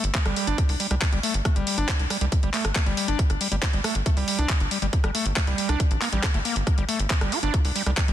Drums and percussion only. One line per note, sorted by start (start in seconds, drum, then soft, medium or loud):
0.04 closed hi-hat medium
0.15 kick loud
0.15 clap loud
0.15 closed hi-hat loud
0.26 cross-stick medium
0.26 closed hi-hat medium
0.36 open hi-hat loud
0.47 closed hi-hat medium
0.58 kick loud
0.58 closed hi-hat medium
0.69 open hi-hat medium
0.80 open hi-hat loud
0.91 cross-stick soft
0.91 closed hi-hat medium
1.02 kick loud
1.02 clap loud
1.02 closed hi-hat loud
1.13 closed hi-hat medium
1.23 open hi-hat loud
1.34 closed hi-hat medium
1.45 kick loud
1.45 cross-stick medium
1.45 closed hi-hat medium
1.56 closed hi-hat medium
1.67 open hi-hat loud
1.78 closed hi-hat medium
1.89 kick loud
1.89 clap loud
1.89 closed hi-hat loud
2.00 closed hi-hat medium
2.10 cross-stick soft
2.10 open hi-hat loud
2.21 closed hi-hat medium
2.32 kick loud
2.32 closed hi-hat loud
2.43 closed hi-hat medium
2.54 clap medium
2.54 open hi-hat loud
2.65 cross-stick medium
2.65 closed hi-hat medium
2.76 kick loud
2.76 clap loud
2.76 closed hi-hat medium
2.86 closed hi-hat medium
2.97 open hi-hat loud
3.08 closed hi-hat medium
3.19 kick loud
3.19 closed hi-hat medium
3.30 cross-stick soft
3.30 closed hi-hat medium
3.41 open hi-hat loud
3.52 closed hi-hat medium
3.62 kick loud
3.62 clap loud
3.62 closed hi-hat medium
3.73 closed hi-hat soft
3.84 cross-stick medium
3.84 open hi-hat loud
3.95 closed hi-hat medium
4.06 kick loud
4.06 closed hi-hat medium
4.17 open hi-hat medium
4.28 open hi-hat loud
4.39 closed hi-hat soft
4.49 kick loud
4.49 cross-stick soft
4.49 clap loud
4.49 closed hi-hat medium
4.60 closed hi-hat medium
4.71 open hi-hat loud
4.82 closed hi-hat medium
4.93 kick loud
4.93 closed hi-hat medium
5.04 cross-stick medium
5.04 closed hi-hat medium
5.15 open hi-hat loud
5.26 closed hi-hat soft
5.36 kick loud
5.36 clap loud
5.36 closed hi-hat medium
5.47 closed hi-hat soft
5.58 open hi-hat loud
5.69 cross-stick soft
5.69 closed hi-hat medium
5.80 kick loud
5.80 closed hi-hat medium
5.91 closed hi-hat soft
6.02 clap medium
6.02 open hi-hat loud
6.13 closed hi-hat soft
6.23 kick loud
6.23 cross-stick medium
6.23 clap loud
6.23 closed hi-hat medium
6.34 closed hi-hat soft
6.45 open hi-hat loud
6.56 closed hi-hat medium
6.67 kick loud
6.67 cross-stick soft
6.67 closed hi-hat medium
6.78 closed hi-hat medium
6.89 open hi-hat loud
6.99 closed hi-hat medium
7.10 kick loud
7.10 clap loud
7.10 closed hi-hat medium
7.21 cross-stick medium
7.21 closed hi-hat soft
7.32 open hi-hat loud
7.43 closed hi-hat medium
7.54 kick loud
7.54 closed hi-hat medium
7.65 open hi-hat medium
7.76 open hi-hat loud
7.86 cross-stick soft
7.86 closed hi-hat soft
7.97 kick loud
7.97 clap loud
7.97 closed hi-hat medium
8.08 closed hi-hat medium